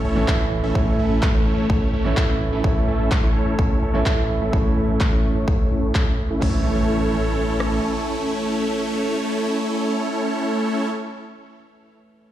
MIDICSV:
0, 0, Header, 1, 7, 480
1, 0, Start_track
1, 0, Key_signature, 3, "major"
1, 0, Tempo, 472441
1, 764, Time_signature, 4, 2, 24, 8
1, 12516, End_track
2, 0, Start_track
2, 0, Title_t, "Supersaw synth"
2, 0, Program_c, 0, 81
2, 45, Note_on_c, 0, 64, 71
2, 45, Note_on_c, 0, 69, 71
2, 45, Note_on_c, 0, 73, 84
2, 46, Note_on_c, 0, 57, 74
2, 46, Note_on_c, 0, 61, 69
2, 256, Note_off_c, 0, 57, 0
2, 256, Note_off_c, 0, 61, 0
2, 256, Note_off_c, 0, 64, 0
2, 256, Note_off_c, 0, 69, 0
2, 256, Note_off_c, 0, 73, 0
2, 285, Note_on_c, 0, 57, 82
2, 285, Note_on_c, 0, 61, 74
2, 285, Note_on_c, 0, 64, 75
2, 285, Note_on_c, 0, 69, 73
2, 285, Note_on_c, 0, 76, 91
2, 450, Note_off_c, 0, 57, 0
2, 450, Note_off_c, 0, 61, 0
2, 450, Note_off_c, 0, 64, 0
2, 450, Note_off_c, 0, 69, 0
2, 450, Note_off_c, 0, 76, 0
2, 645, Note_on_c, 0, 57, 71
2, 645, Note_on_c, 0, 61, 64
2, 645, Note_on_c, 0, 64, 65
2, 645, Note_on_c, 0, 69, 65
2, 645, Note_on_c, 0, 76, 81
2, 747, Note_off_c, 0, 57, 0
2, 747, Note_off_c, 0, 61, 0
2, 747, Note_off_c, 0, 64, 0
2, 747, Note_off_c, 0, 69, 0
2, 747, Note_off_c, 0, 76, 0
2, 765, Note_on_c, 0, 57, 82
2, 765, Note_on_c, 0, 61, 76
2, 765, Note_on_c, 0, 64, 77
2, 765, Note_on_c, 0, 69, 76
2, 765, Note_on_c, 0, 73, 89
2, 976, Note_off_c, 0, 57, 0
2, 976, Note_off_c, 0, 61, 0
2, 976, Note_off_c, 0, 64, 0
2, 976, Note_off_c, 0, 69, 0
2, 976, Note_off_c, 0, 73, 0
2, 1005, Note_on_c, 0, 57, 78
2, 1005, Note_on_c, 0, 61, 70
2, 1005, Note_on_c, 0, 64, 72
2, 1005, Note_on_c, 0, 69, 72
2, 1005, Note_on_c, 0, 76, 86
2, 1269, Note_off_c, 0, 57, 0
2, 1269, Note_off_c, 0, 61, 0
2, 1269, Note_off_c, 0, 64, 0
2, 1269, Note_off_c, 0, 69, 0
2, 1269, Note_off_c, 0, 76, 0
2, 1365, Note_on_c, 0, 57, 91
2, 1365, Note_on_c, 0, 61, 83
2, 1365, Note_on_c, 0, 64, 84
2, 1365, Note_on_c, 0, 69, 82
2, 1365, Note_on_c, 0, 73, 101
2, 1696, Note_off_c, 0, 57, 0
2, 1696, Note_off_c, 0, 61, 0
2, 1696, Note_off_c, 0, 64, 0
2, 1696, Note_off_c, 0, 69, 0
2, 1696, Note_off_c, 0, 73, 0
2, 1725, Note_on_c, 0, 57, 93
2, 1725, Note_on_c, 0, 61, 85
2, 1725, Note_on_c, 0, 64, 86
2, 1725, Note_on_c, 0, 69, 86
2, 1725, Note_on_c, 0, 73, 103
2, 1936, Note_off_c, 0, 57, 0
2, 1936, Note_off_c, 0, 61, 0
2, 1936, Note_off_c, 0, 64, 0
2, 1936, Note_off_c, 0, 69, 0
2, 1936, Note_off_c, 0, 73, 0
2, 1965, Note_on_c, 0, 57, 76
2, 1965, Note_on_c, 0, 61, 70
2, 1965, Note_on_c, 0, 64, 69
2, 1965, Note_on_c, 0, 69, 69
2, 1965, Note_on_c, 0, 73, 83
2, 2176, Note_off_c, 0, 57, 0
2, 2176, Note_off_c, 0, 61, 0
2, 2176, Note_off_c, 0, 64, 0
2, 2176, Note_off_c, 0, 69, 0
2, 2176, Note_off_c, 0, 73, 0
2, 2204, Note_on_c, 0, 57, 81
2, 2204, Note_on_c, 0, 61, 75
2, 2204, Note_on_c, 0, 69, 74
2, 2204, Note_on_c, 0, 76, 92
2, 2205, Note_on_c, 0, 64, 74
2, 2369, Note_off_c, 0, 57, 0
2, 2369, Note_off_c, 0, 61, 0
2, 2369, Note_off_c, 0, 69, 0
2, 2369, Note_off_c, 0, 76, 0
2, 2370, Note_off_c, 0, 64, 0
2, 2565, Note_on_c, 0, 57, 71
2, 2565, Note_on_c, 0, 61, 65
2, 2565, Note_on_c, 0, 64, 64
2, 2565, Note_on_c, 0, 69, 65
2, 2565, Note_on_c, 0, 76, 78
2, 2666, Note_off_c, 0, 61, 0
2, 2666, Note_off_c, 0, 64, 0
2, 2667, Note_off_c, 0, 57, 0
2, 2667, Note_off_c, 0, 69, 0
2, 2667, Note_off_c, 0, 76, 0
2, 2685, Note_on_c, 0, 57, 80
2, 2685, Note_on_c, 0, 61, 75
2, 2685, Note_on_c, 0, 64, 75
2, 2685, Note_on_c, 0, 69, 76
2, 2685, Note_on_c, 0, 73, 91
2, 2896, Note_off_c, 0, 57, 0
2, 2896, Note_off_c, 0, 61, 0
2, 2896, Note_off_c, 0, 64, 0
2, 2896, Note_off_c, 0, 69, 0
2, 2896, Note_off_c, 0, 73, 0
2, 2925, Note_on_c, 0, 57, 79
2, 2925, Note_on_c, 0, 64, 71
2, 2925, Note_on_c, 0, 69, 73
2, 2925, Note_on_c, 0, 76, 85
2, 2926, Note_on_c, 0, 61, 70
2, 3189, Note_off_c, 0, 57, 0
2, 3189, Note_off_c, 0, 61, 0
2, 3189, Note_off_c, 0, 64, 0
2, 3189, Note_off_c, 0, 69, 0
2, 3189, Note_off_c, 0, 76, 0
2, 3285, Note_on_c, 0, 57, 89
2, 3285, Note_on_c, 0, 61, 82
2, 3285, Note_on_c, 0, 64, 83
2, 3285, Note_on_c, 0, 69, 82
2, 3285, Note_on_c, 0, 73, 98
2, 3616, Note_off_c, 0, 57, 0
2, 3616, Note_off_c, 0, 61, 0
2, 3616, Note_off_c, 0, 64, 0
2, 3616, Note_off_c, 0, 69, 0
2, 3616, Note_off_c, 0, 73, 0
2, 3645, Note_on_c, 0, 57, 91
2, 3645, Note_on_c, 0, 61, 84
2, 3645, Note_on_c, 0, 64, 86
2, 3645, Note_on_c, 0, 69, 86
2, 3645, Note_on_c, 0, 73, 101
2, 3856, Note_off_c, 0, 57, 0
2, 3856, Note_off_c, 0, 61, 0
2, 3856, Note_off_c, 0, 64, 0
2, 3856, Note_off_c, 0, 69, 0
2, 3856, Note_off_c, 0, 73, 0
2, 3885, Note_on_c, 0, 57, 75
2, 3885, Note_on_c, 0, 61, 70
2, 3885, Note_on_c, 0, 64, 68
2, 3885, Note_on_c, 0, 69, 67
2, 3885, Note_on_c, 0, 73, 84
2, 4096, Note_off_c, 0, 57, 0
2, 4096, Note_off_c, 0, 61, 0
2, 4096, Note_off_c, 0, 64, 0
2, 4096, Note_off_c, 0, 69, 0
2, 4096, Note_off_c, 0, 73, 0
2, 4125, Note_on_c, 0, 57, 82
2, 4125, Note_on_c, 0, 61, 73
2, 4125, Note_on_c, 0, 64, 73
2, 4125, Note_on_c, 0, 69, 76
2, 4125, Note_on_c, 0, 76, 89
2, 4290, Note_off_c, 0, 57, 0
2, 4290, Note_off_c, 0, 61, 0
2, 4290, Note_off_c, 0, 64, 0
2, 4290, Note_off_c, 0, 69, 0
2, 4290, Note_off_c, 0, 76, 0
2, 4485, Note_on_c, 0, 57, 71
2, 4485, Note_on_c, 0, 61, 62
2, 4485, Note_on_c, 0, 64, 62
2, 4485, Note_on_c, 0, 69, 64
2, 4485, Note_on_c, 0, 76, 80
2, 4587, Note_off_c, 0, 57, 0
2, 4587, Note_off_c, 0, 61, 0
2, 4587, Note_off_c, 0, 64, 0
2, 4587, Note_off_c, 0, 69, 0
2, 4587, Note_off_c, 0, 76, 0
2, 4605, Note_on_c, 0, 57, 80
2, 4605, Note_on_c, 0, 61, 73
2, 4605, Note_on_c, 0, 64, 74
2, 4605, Note_on_c, 0, 69, 75
2, 4605, Note_on_c, 0, 73, 87
2, 4816, Note_off_c, 0, 57, 0
2, 4816, Note_off_c, 0, 61, 0
2, 4816, Note_off_c, 0, 64, 0
2, 4816, Note_off_c, 0, 69, 0
2, 4816, Note_off_c, 0, 73, 0
2, 4844, Note_on_c, 0, 61, 72
2, 4845, Note_on_c, 0, 57, 77
2, 4845, Note_on_c, 0, 64, 70
2, 4845, Note_on_c, 0, 69, 69
2, 4845, Note_on_c, 0, 76, 85
2, 5109, Note_off_c, 0, 57, 0
2, 5109, Note_off_c, 0, 61, 0
2, 5109, Note_off_c, 0, 64, 0
2, 5109, Note_off_c, 0, 69, 0
2, 5109, Note_off_c, 0, 76, 0
2, 5205, Note_on_c, 0, 57, 89
2, 5205, Note_on_c, 0, 61, 81
2, 5205, Note_on_c, 0, 64, 80
2, 5205, Note_on_c, 0, 69, 81
2, 5205, Note_on_c, 0, 73, 100
2, 5535, Note_off_c, 0, 61, 0
2, 5535, Note_off_c, 0, 69, 0
2, 5536, Note_off_c, 0, 57, 0
2, 5536, Note_off_c, 0, 64, 0
2, 5536, Note_off_c, 0, 73, 0
2, 5564, Note_on_c, 0, 57, 92
2, 5564, Note_on_c, 0, 61, 83
2, 5564, Note_on_c, 0, 64, 84
2, 5564, Note_on_c, 0, 69, 85
2, 5564, Note_on_c, 0, 73, 101
2, 5775, Note_off_c, 0, 57, 0
2, 5775, Note_off_c, 0, 61, 0
2, 5775, Note_off_c, 0, 64, 0
2, 5775, Note_off_c, 0, 69, 0
2, 5775, Note_off_c, 0, 73, 0
2, 5804, Note_on_c, 0, 64, 67
2, 5805, Note_on_c, 0, 57, 75
2, 5805, Note_on_c, 0, 61, 67
2, 5805, Note_on_c, 0, 69, 66
2, 5805, Note_on_c, 0, 73, 81
2, 6015, Note_off_c, 0, 64, 0
2, 6016, Note_off_c, 0, 57, 0
2, 6016, Note_off_c, 0, 61, 0
2, 6016, Note_off_c, 0, 69, 0
2, 6016, Note_off_c, 0, 73, 0
2, 6044, Note_on_c, 0, 57, 80
2, 6044, Note_on_c, 0, 76, 88
2, 6045, Note_on_c, 0, 61, 75
2, 6045, Note_on_c, 0, 64, 73
2, 6045, Note_on_c, 0, 69, 75
2, 6209, Note_off_c, 0, 57, 0
2, 6209, Note_off_c, 0, 76, 0
2, 6210, Note_off_c, 0, 61, 0
2, 6210, Note_off_c, 0, 64, 0
2, 6210, Note_off_c, 0, 69, 0
2, 6404, Note_on_c, 0, 57, 71
2, 6404, Note_on_c, 0, 61, 64
2, 6404, Note_on_c, 0, 64, 66
2, 6404, Note_on_c, 0, 69, 63
2, 6404, Note_on_c, 0, 76, 77
2, 6506, Note_off_c, 0, 57, 0
2, 6506, Note_off_c, 0, 61, 0
2, 6506, Note_off_c, 0, 64, 0
2, 6506, Note_off_c, 0, 69, 0
2, 6506, Note_off_c, 0, 76, 0
2, 6524, Note_on_c, 0, 57, 80
2, 6524, Note_on_c, 0, 61, 74
2, 6524, Note_on_c, 0, 64, 75
2, 6524, Note_on_c, 0, 69, 75
2, 6524, Note_on_c, 0, 73, 92
2, 11058, Note_off_c, 0, 57, 0
2, 11058, Note_off_c, 0, 61, 0
2, 11058, Note_off_c, 0, 64, 0
2, 11058, Note_off_c, 0, 69, 0
2, 11058, Note_off_c, 0, 73, 0
2, 12516, End_track
3, 0, Start_track
3, 0, Title_t, "Grand piano"
3, 0, Program_c, 1, 0
3, 0, Control_c, 1, 64, 127
3, 0, Note_on_c, 1, 45, 73
3, 0, Note_on_c, 1, 52, 65
3, 0, Note_on_c, 1, 57, 67
3, 0, Note_on_c, 1, 61, 68
3, 0, Note_on_c, 1, 64, 81
3, 129, Note_off_c, 1, 45, 0
3, 133, Note_off_c, 1, 52, 0
3, 136, Note_off_c, 1, 57, 0
3, 139, Note_off_c, 1, 61, 0
3, 142, Note_off_c, 1, 64, 0
3, 159, Note_on_c, 1, 45, 84
3, 162, Note_on_c, 1, 52, 77
3, 165, Note_on_c, 1, 57, 75
3, 168, Note_on_c, 1, 61, 77
3, 171, Note_on_c, 1, 64, 92
3, 227, Note_off_c, 1, 45, 0
3, 229, Note_off_c, 1, 52, 0
3, 230, Note_off_c, 1, 57, 0
3, 232, Note_off_c, 1, 61, 0
3, 233, Note_off_c, 1, 64, 0
3, 753, Note_on_c, 1, 45, 74
3, 759, Note_on_c, 1, 52, 67
3, 765, Note_on_c, 1, 57, 67
3, 771, Note_on_c, 1, 61, 66
3, 777, Note_on_c, 1, 64, 80
3, 2050, Note_off_c, 1, 45, 0
3, 2053, Note_off_c, 1, 52, 0
3, 2056, Note_off_c, 1, 57, 0
3, 2059, Note_off_c, 1, 61, 0
3, 2062, Note_off_c, 1, 64, 0
3, 2078, Note_on_c, 1, 45, 85
3, 2081, Note_on_c, 1, 52, 76
3, 2085, Note_on_c, 1, 57, 77
3, 2088, Note_on_c, 1, 61, 75
3, 2091, Note_on_c, 1, 64, 91
3, 2147, Note_off_c, 1, 45, 0
3, 2149, Note_off_c, 1, 52, 0
3, 2150, Note_off_c, 1, 57, 0
3, 2152, Note_off_c, 1, 61, 0
3, 2153, Note_off_c, 1, 64, 0
3, 2673, Note_on_c, 1, 45, 71
3, 2679, Note_on_c, 1, 52, 65
3, 2685, Note_on_c, 1, 57, 66
3, 2691, Note_on_c, 1, 61, 67
3, 2697, Note_on_c, 1, 64, 81
3, 3970, Note_off_c, 1, 45, 0
3, 3973, Note_off_c, 1, 52, 0
3, 3976, Note_off_c, 1, 57, 0
3, 3979, Note_off_c, 1, 61, 0
3, 3982, Note_off_c, 1, 64, 0
3, 3999, Note_on_c, 1, 45, 84
3, 4002, Note_on_c, 1, 52, 76
3, 4006, Note_on_c, 1, 57, 75
3, 4008, Note_on_c, 1, 61, 77
3, 4011, Note_on_c, 1, 64, 92
3, 4067, Note_off_c, 1, 45, 0
3, 4069, Note_off_c, 1, 52, 0
3, 4071, Note_off_c, 1, 57, 0
3, 4072, Note_off_c, 1, 61, 0
3, 4073, Note_off_c, 1, 64, 0
3, 4593, Note_on_c, 1, 45, 71
3, 4600, Note_on_c, 1, 52, 66
3, 4606, Note_on_c, 1, 57, 66
3, 4612, Note_on_c, 1, 61, 66
3, 4618, Note_on_c, 1, 64, 79
3, 5890, Note_off_c, 1, 45, 0
3, 5893, Note_off_c, 1, 52, 0
3, 5896, Note_off_c, 1, 57, 0
3, 5899, Note_off_c, 1, 61, 0
3, 5902, Note_off_c, 1, 64, 0
3, 6506, Note_on_c, 1, 52, 76
3, 6518, Note_on_c, 1, 57, 70
3, 6530, Note_on_c, 1, 61, 69
3, 6535, Control_c, 1, 64, 0
3, 6542, Note_on_c, 1, 64, 82
3, 6688, Control_c, 1, 64, 127
3, 11040, Note_off_c, 1, 52, 0
3, 11052, Note_off_c, 1, 57, 0
3, 11064, Note_off_c, 1, 61, 0
3, 11076, Note_off_c, 1, 64, 0
3, 12516, End_track
4, 0, Start_track
4, 0, Title_t, "Sub bass"
4, 0, Program_c, 2, 38
4, 45, Note_on_c, 2, 33, 92
4, 261, Note_off_c, 2, 33, 0
4, 285, Note_on_c, 2, 33, 92
4, 620, Note_off_c, 2, 33, 0
4, 644, Note_on_c, 2, 33, 95
4, 740, Note_off_c, 2, 33, 0
4, 765, Note_on_c, 2, 33, 92
4, 981, Note_off_c, 2, 33, 0
4, 1005, Note_on_c, 2, 33, 93
4, 1341, Note_off_c, 2, 33, 0
4, 1365, Note_on_c, 2, 33, 94
4, 1700, Note_off_c, 2, 33, 0
4, 1725, Note_on_c, 2, 33, 93
4, 1940, Note_off_c, 2, 33, 0
4, 1965, Note_on_c, 2, 33, 93
4, 2180, Note_off_c, 2, 33, 0
4, 2204, Note_on_c, 2, 33, 96
4, 2540, Note_off_c, 2, 33, 0
4, 2564, Note_on_c, 2, 33, 92
4, 2660, Note_off_c, 2, 33, 0
4, 2684, Note_on_c, 2, 33, 90
4, 2900, Note_off_c, 2, 33, 0
4, 2924, Note_on_c, 2, 33, 90
4, 3260, Note_off_c, 2, 33, 0
4, 3285, Note_on_c, 2, 33, 96
4, 3620, Note_off_c, 2, 33, 0
4, 3644, Note_on_c, 2, 33, 90
4, 3860, Note_off_c, 2, 33, 0
4, 3884, Note_on_c, 2, 33, 93
4, 4100, Note_off_c, 2, 33, 0
4, 4124, Note_on_c, 2, 33, 94
4, 4460, Note_off_c, 2, 33, 0
4, 4484, Note_on_c, 2, 33, 92
4, 4580, Note_off_c, 2, 33, 0
4, 4605, Note_on_c, 2, 33, 90
4, 4820, Note_off_c, 2, 33, 0
4, 4845, Note_on_c, 2, 33, 90
4, 5181, Note_off_c, 2, 33, 0
4, 5205, Note_on_c, 2, 33, 95
4, 5541, Note_off_c, 2, 33, 0
4, 5565, Note_on_c, 2, 33, 92
4, 5780, Note_off_c, 2, 33, 0
4, 5805, Note_on_c, 2, 33, 90
4, 6020, Note_off_c, 2, 33, 0
4, 6044, Note_on_c, 2, 33, 92
4, 6380, Note_off_c, 2, 33, 0
4, 6404, Note_on_c, 2, 33, 91
4, 6500, Note_off_c, 2, 33, 0
4, 6524, Note_on_c, 2, 33, 89
4, 7923, Note_off_c, 2, 33, 0
4, 12516, End_track
5, 0, Start_track
5, 0, Title_t, "Impact"
5, 0, Program_c, 3, 103
5, 6524, Note_on_c, 3, 60, 61
5, 11099, Note_off_c, 3, 60, 0
5, 12516, End_track
6, 0, Start_track
6, 0, Title_t, "Sub drop"
6, 0, Program_c, 4, 103
6, 0, Note_on_c, 4, 60, 69
6, 765, Note_off_c, 4, 60, 0
6, 12516, End_track
7, 0, Start_track
7, 0, Title_t, "Drums"
7, 285, Note_on_c, 9, 36, 110
7, 285, Note_on_c, 9, 39, 120
7, 386, Note_off_c, 9, 39, 0
7, 387, Note_off_c, 9, 36, 0
7, 765, Note_on_c, 9, 36, 112
7, 866, Note_off_c, 9, 36, 0
7, 1244, Note_on_c, 9, 39, 111
7, 1245, Note_on_c, 9, 36, 116
7, 1346, Note_off_c, 9, 36, 0
7, 1346, Note_off_c, 9, 39, 0
7, 1725, Note_on_c, 9, 36, 118
7, 1826, Note_off_c, 9, 36, 0
7, 2204, Note_on_c, 9, 39, 116
7, 2205, Note_on_c, 9, 36, 117
7, 2306, Note_off_c, 9, 36, 0
7, 2306, Note_off_c, 9, 39, 0
7, 2684, Note_on_c, 9, 36, 113
7, 2786, Note_off_c, 9, 36, 0
7, 3164, Note_on_c, 9, 36, 117
7, 3164, Note_on_c, 9, 39, 110
7, 3266, Note_off_c, 9, 36, 0
7, 3266, Note_off_c, 9, 39, 0
7, 3644, Note_on_c, 9, 36, 121
7, 3746, Note_off_c, 9, 36, 0
7, 4124, Note_on_c, 9, 36, 114
7, 4124, Note_on_c, 9, 39, 114
7, 4226, Note_off_c, 9, 36, 0
7, 4226, Note_off_c, 9, 39, 0
7, 4605, Note_on_c, 9, 36, 109
7, 4706, Note_off_c, 9, 36, 0
7, 5084, Note_on_c, 9, 39, 104
7, 5085, Note_on_c, 9, 36, 110
7, 5186, Note_off_c, 9, 36, 0
7, 5186, Note_off_c, 9, 39, 0
7, 5565, Note_on_c, 9, 36, 114
7, 5666, Note_off_c, 9, 36, 0
7, 6044, Note_on_c, 9, 36, 113
7, 6044, Note_on_c, 9, 39, 109
7, 6145, Note_off_c, 9, 39, 0
7, 6146, Note_off_c, 9, 36, 0
7, 6524, Note_on_c, 9, 36, 101
7, 6524, Note_on_c, 9, 49, 77
7, 6625, Note_off_c, 9, 49, 0
7, 6626, Note_off_c, 9, 36, 0
7, 7724, Note_on_c, 9, 37, 55
7, 7825, Note_off_c, 9, 37, 0
7, 12516, End_track
0, 0, End_of_file